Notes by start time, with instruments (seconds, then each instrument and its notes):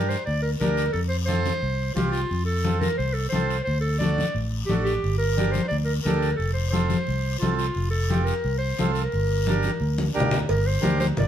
Already playing: fingered electric bass G2, accordion D4 G4 A#4, clarinet A#4
0.09 clarinet C5, short guiro
0.26 fingered electric bass D2, clarinet D5, long guiro
0.42 clarinet A#4
0.60 fingered electric bass D2, accordion D4 G4 A#4, clarinet A#4, high conga, short guiro
0.77 short guiro
0.93 fingered electric bass F2, clarinet A4, long guiro
1.09 clarinet C5
1.26 accordion C4 F4 A4, clarinet C5, high conga, short guiro
1.46 high conga, short guiro
1.62 fingered electric bass C2, long guiro
1.95 fingered electric bass C2, accordion C4 F4 G4, clarinet F4, high conga, short guiro
2.12 clarinet F4, short guiro
2.31 fingered electric bass F2, long guiro
2.46 clarinet A4
2.65 accordion C4 F4 A4, high conga, short guiro
2.80 clarinet A#4, high conga, short guiro
2.98 fingered electric bass C2, clarinet C5, long guiro
3.14 clarinet A4
3.29 fingered electric bass C2, accordion C4 F4 A4, clarinet C5, high conga
3.34 short guiro
3.50 short guiro
3.64 fingered electric bass D2, clarinet C5, long guiro
3.81 clarinet A4
3.99 accordion D4 F#4 A4, clarinet D5, high conga, short guiro
4.18 high conga, short guiro
4.35 fingered electric bass A1, long guiro
4.66 fingered electric bass A1, accordion D4 F#4 A4, clarinet G4, high conga, short guiro
4.84 clarinet G4, short guiro
5.04 fingered electric bass G1, long guiro
5.18 clarinet A#4
5.37 accordion D4 G4 A#4, high conga, short guiro
5.52 clarinet C5, high conga, short guiro
5.68 fingered electric bass D2, clarinet D5, long guiro
5.85 clarinet A#4
6.02 fingered electric bass D2, accordion G4, clarinet A#4, short guiro
6.06 accordion D4 A4, high conga
6.22 short guiro
6.36 fingered electric bass F1, clarinet A4, long guiro
6.54 clarinet C5
6.70 accordion C4 F4 A4, clarinet C5, high conga, short guiro
6.90 high conga, short guiro
7.07 fingered electric bass C2, long guiro
7.39 fingered electric bass C2, accordion C4 F4 A4, clarinet F4, high conga, short guiro
7.57 clarinet F4, short guiro
7.75 fingered electric bass F1, long guiro
7.91 clarinet A4
8.10 accordion C4 F4 G4, high conga, short guiro
8.24 clarinet A#4, short guiro
8.44 fingered electric bass C2, long guiro
8.58 clarinet C5
8.79 fingered electric bass C2, accordion C4 F4 A4, high conga, short guiro
8.94 clarinet A#4, short guiro
9.12 fingered electric bass G1, long guiro
9.46 accordion D4 G4 A#4, high conga, short guiro
9.63 high conga, short guiro
9.80 fingered electric bass D2, long guiro
9.98 high conga
10.14 fingered electric bass D2, accordion D4 G4 A#4, short guiro
10.20 low conga
10.31 low conga, short guiro
10.49 fingered electric bass G1, clarinet A#4, cowbell, long guiro
10.67 clarinet C5
10.81 fingered electric bass D2, accordion D4 G4 A#4, cowbell, high conga, short guiro
11.00 clarinet C5, high conga, short guiro
11.17 fingered electric bass G1, clarinet D5, cowbell, low conga, long guiro